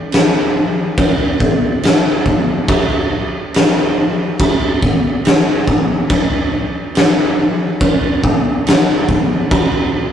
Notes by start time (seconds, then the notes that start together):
0.12 snare, crash
0.98 kick, crash
1.40 kick
1.83 snare, crash
2.26 kick
2.68 kick, crash
3.54 snare, crash
4.40 kick, crash
4.82 kick
5.25 snare, crash
5.68 kick
6.10 kick, crash
6.95 snare, crash
7.81 kick, crash
8.24 kick
8.67 snare, crash
9.09 kick
9.51 kick, crash